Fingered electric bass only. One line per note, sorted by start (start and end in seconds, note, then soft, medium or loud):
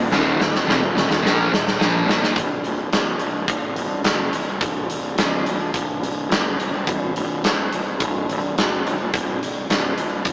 0.00 0.10 D#1 medium
0.12 0.38 D#1 medium
0.39 0.65 D#1 medium
0.66 0.79 F1 medium
0.80 0.94 D#1 medium
0.95 1.08 D#1 medium
1.09 1.22 D#1 medium
1.23 1.50 A#1 loud
1.52 1.78 D#1 medium
1.81 2.07 A#1 medium
2.08 2.21 A#1 medium
2.23 2.36 D#1 medium
2.36 2.62 C1 medium
2.65 2.91 C1 medium
2.92 3.19 C#1 medium
3.19 3.46 C1 medium
3.49 3.75 C1 medium
3.78 4.03 C1 medium
4.04 4.31 F#1 medium
4.33 4.47 C1 medium
4.48 4.60 C1 medium
4.61 4.88 C1 medium
4.90 5.16 C1 medium
5.19 5.45 C#1 medium
5.48 5.73 C1 medium
5.74 6.01 C1 medium
6.04 6.30 C1 medium
6.32 6.58 F#1 medium
6.61 6.73 C1 medium
6.73 6.87 C1 medium
6.87 7.14 C1 medium
7.17 7.42 C1 medium
7.45 7.71 C#1 medium
7.74 7.99 C1 medium
8.01 8.27 C1 medium
8.31 8.56 C1 medium
8.58 8.84 F#1 medium
8.86 8.98 C1 medium
9.01 9.13 C1 medium
9.13 9.39 C1 medium
9.42 9.68 C1 medium
9.69 9.95 C#1 medium
9.97 10.24 C1 medium
10.25 10.33 D#1 medium